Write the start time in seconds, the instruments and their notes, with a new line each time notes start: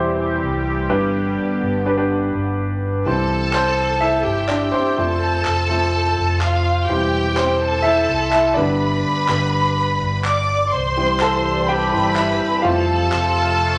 Already playing: fingered electric bass E1, analog synth pad E3 G3 C4 G4, grand piano E3 E4 G4 C5
0.43 fingered electric bass C2
0.89 fingered electric bass G1, grand piano G2 D4 G4 B4, analog synth pad D3 B3
1.63 fingered electric bass G1
1.86 grand piano D4 G4 B4
1.97 grand piano D4 G4 B4
2.34 fingered electric bass G1
3.06 fingered electric bass C2, grand piano E3 G3 C4, violin section A4 A5
3.53 grand piano C4 C5, clap
4.01 grand piano E4 E5
4.24 fingered electric bass G1, violin section G4 G5
4.48 grand piano D4 D5, clap
4.72 grand piano C4 C5
4.97 fingered electric bass F1, grand piano F3 A3 C4, violin section A4 A5
5.45 fingered electric bass F1, clap
5.69 grand piano F3 A3 C4
6.18 fingered electric bass F1
6.40 violin section F4 F5, clap
6.87 fingered electric bass E1, grand piano E3 G3 C4, violin section G4 G5
7.36 grand piano C4 C5, clap
7.60 violin section A4 A5
7.82 grand piano E4 E5
8.09 fingered electric bass C2
8.31 grand piano E4 E5, clap
8.54 fingered electric bass G1, grand piano D3 G3 B3 D4 D5, violin section B4 B5
9.28 fingered electric bass G1, grand piano D3 G3 B3, clap
10.01 fingered electric bass G1
10.24 violin section D5 D6, clap
10.72 fingered electric bass C2, analog synth pad E3 G3 C4 G4, violin section C5 C6
10.96 grand piano E3 G3 C4
11.20 grand piano A4 A5, clap
11.68 grand piano G4 G5, violin section B4 B5
11.92 fingered electric bass G1, grand piano E3 G3 C4
12.16 grand piano E4 E5, clap
12.62 fingered electric bass F1, analog synth pad C3 F3 A3 F4, grand piano F3 A3 C4 F4 F5, violin section A4 A5
13.12 fingered electric bass F1, clap